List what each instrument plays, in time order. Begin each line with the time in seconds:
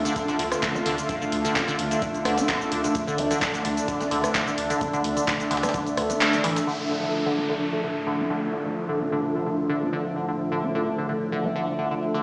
Already playing: analog synth pad D3 A3 F4, ambient pad D4 A4 E5
0.05 acid bass D3, closed hi-hat, shaker
0.16 kick, closed hi-hat, shaker
0.28 acid bass D3, snare, closed hi-hat, shaker
0.39 analog synth bass D2, acid bass D3, closed hi-hat, open hi-hat
0.52 cross-stick, snare, closed hi-hat, shaker
0.63 acid bass D3, kick, snare, clap, closed hi-hat, shaker
0.75 acid bass D4, shaker
0.86 analog synth bass D2, acid bass D3, closed hi-hat, open hi-hat
0.98 closed hi-hat, shaker
1.09 acid bass D3, kick, closed hi-hat, shaker
1.21 acid bass D3, shaker
1.32 analog synth bass D2, closed hi-hat, open hi-hat
1.45 acid bass D3, closed hi-hat, shaker
1.55 acid bass D4, kick, snare, clap, closed hi-hat, shaker
1.68 acid bass D3, closed hi-hat, shaker
1.79 analog synth bass D2, closed hi-hat, open hi-hat
1.91 acid bass D3, closed hi-hat, shaker
2.02 acid bass D3, kick, closed hi-hat, shaker
2.14 closed hi-hat, shaker
2.25 analog synth bass D2, acid bass D3, cross-stick, closed hi-hat, open hi-hat
2.38 acid bass D4, snare, closed hi-hat, shaker
2.48 acid bass D3, kick, snare, clap, closed hi-hat, shaker
2.61 shaker
2.72 analog synth bass D2, acid bass D3, closed hi-hat, open hi-hat
2.84 acid bass D3, closed hi-hat, shaker
2.95 analog synth pad D4, kick, closed hi-hat, shaker
3.07 acid bass D3, shaker
3.18 analog synth bass D2, acid bass D4, closed hi-hat, open hi-hat
3.31 acid bass D3, snare, closed hi-hat, shaker
3.42 kick, snare, clap, closed hi-hat, shaker
3.54 acid bass D3, snare, closed hi-hat, shaker
3.65 analog synth bass D2, acid bass D3, closed hi-hat, open hi-hat
3.77 closed hi-hat, shaker
3.88 acid bass D3, kick, closed hi-hat, shaker
4.00 acid bass D4, snare, closed hi-hat, shaker
4.11 analog synth bass D2, acid bass D3, closed hi-hat, open hi-hat
4.24 cross-stick, snare, closed hi-hat, shaker
4.34 acid bass D3, kick, snare, clap, closed hi-hat, shaker
4.47 acid bass D3, shaker
4.58 analog synth bass D2, closed hi-hat, open hi-hat
4.70 acid bass D3, closed hi-hat, shaker
4.81 acid bass D4, kick, closed hi-hat, shaker
4.93 acid bass D3, closed hi-hat, shaker
5.04 analog synth bass D2, closed hi-hat, open hi-hat
5.17 acid bass D3, closed hi-hat, shaker
5.27 acid bass D3, kick, snare, clap, closed hi-hat, shaker
5.40 closed hi-hat, shaker
5.51 analog synth bass D2, acid bass D3, snare, closed hi-hat, open hi-hat
5.57 snare, closed hi-hat
5.63 acid bass D4, cross-stick, snare, closed hi-hat, shaker
5.69 snare, closed hi-hat
5.74 acid bass D3, kick, closed hi-hat, shaker
5.87 closed hi-hat, shaker
5.97 analog synth bass D2, acid bass D3, cross-stick, closed hi-hat, open hi-hat
6.10 acid bass D4, snare, closed hi-hat, shaker
6.21 snare, clap, closed hi-hat, shaker
6.33 acid bass D3, closed hi-hat, shaker
6.44 analog synth bass D1, acid bass E3, snare, closed hi-hat, open hi-hat
6.56 acid bass F3, snare, closed hi-hat, shaker
6.67 analog synth pad D2 A2 F3, acid bass D3, downlifter
6.90 acid bass D3
7.03 acid bass D3
7.26 acid bass D3
7.37 acid bass D4
7.49 acid bass D3
7.73 acid bass D3
7.83 acid bass D3
8.07 acid bass D3
8.19 acid bass D4
8.30 acid bass D3
8.53 acid bass D3
8.66 acid bass D3
8.89 acid bass D3
9.00 acid bass D4
9.12 acid bass D3
9.35 acid bass D3
9.46 acid bass D3
9.69 acid bass D3
9.82 acid bass D4
9.93 acid bass D3
10.16 acid bass D3
10.28 acid bass D3
10.52 acid bass D3
10.63 acid bass D4
10.75 acid bass D3
10.98 acid bass D3
11.09 acid bass D3
11.32 acid bass D3
11.45 acid bass D4
11.56 acid bass D3
11.79 acid bass D3
11.91 acid bass D3
12.14 acid bass D3